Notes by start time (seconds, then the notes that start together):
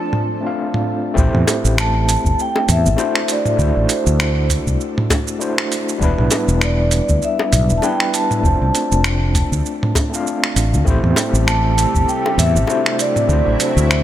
Already playing: F3 A3 C4 D4 F4 A4 C5
0.13 mid tom
0.41 A3 C4 D4
0.45 F4 F5
0.74 mid tom
1.14 A1 A3 C4 E4, kick, shaker
1.18 G4 C5
1.34 E2, mid tom
1.47 closed hi-hat, high bongo, shaker
1.65 A1, shaker
1.78 A5, finger snap, shaker
2.09 closed hi-hat, shaker
2.25 G1, kick, shaker
2.39 G5, shaker
2.56 high bongo
2.69 E2 E5, closed hi-hat, mid tom, shaker
2.86 A1, shaker
2.96 A3 D4 E4 F#4 C5, high bongo, shaker
3.15 finger snap
3.28 D5, closed hi-hat, shaker
3.46 mid tom, shaker
3.56 D2 A3 D4 E4 F#4, kick, shaker
3.61 C5
3.77 A1
3.89 C5, closed hi-hat, shaker
4.07 D2, shaker
4.20 finger snap, shaker
4.50 kick, closed hi-hat, shaker
4.67 C2, kick, shaker
4.81 shaker
4.98 mid tom
5.10 kick, closed hi-hat, high bongo, shaker
5.28 shaker
5.39 A3 D4 E4 F#4 C5, shaker
5.58 finger snap
5.72 closed hi-hat, shaker
5.89 shaker
5.98 E1 G3 B3 D4, kick, shaker
6.02 E4 B4
6.18 B1, mid tom
6.31 closed hi-hat, high bongo, shaker
6.48 E1, shaker
6.61 D5, finger snap, shaker
6.91 closed hi-hat, shaker
7.09 D2, kick, shaker
7.22 E5, shaker
7.39 high bongo
7.53 B1, closed hi-hat, mid tom, shaker
7.70 E1, shaker
7.78 G3 A5
7.82 B3 D4 E4 B4 G5, high bongo, shaker
8.00 finger snap
8.14 A5, closed hi-hat, shaker
8.31 mid tom, shaker
8.41 F1 A3 C4 D4, kick, shaker
8.45 F4 C5
8.62 C2
8.75 closed hi-hat, shaker
8.92 F1, shaker
9.04 finger snap, shaker
9.35 kick, closed hi-hat, shaker
9.52 D2, kick, shaker
9.66 shaker
9.83 mid tom
9.95 kick, closed hi-hat, high bongo, shaker
10.10 A3 C4 D4
10.14 F4 F5, shaker
10.27 shaker
10.44 finger snap
10.56 A1, closed hi-hat, shaker
10.74 D2, shaker
10.85 A1 C3 G3 A3 C4 E4 G4, kick, shaker
10.90 C5
11.03 E2, mid tom
11.16 closed hi-hat, high bongo, shaker
11.33 A1, shaker
11.47 A5, finger snap, shaker
11.78 closed hi-hat, shaker
11.95 G1, kick, shaker
12.08 G5, shaker
12.26 high bongo
12.38 E2 E5, closed hi-hat, mid tom, shaker
12.55 A1, shaker
12.67 A3 D4 E4 F#4 C5, high bongo, shaker
12.86 finger snap
12.99 F#3 E4 D5, closed hi-hat, shaker
13.16 mid tom, shaker
13.27 D2 A3 D4 E4, kick, shaker
13.32 F#4 C5
13.46 A1
13.60 C5, closed hi-hat, shaker
13.77 D2, shaker
13.91 finger snap, shaker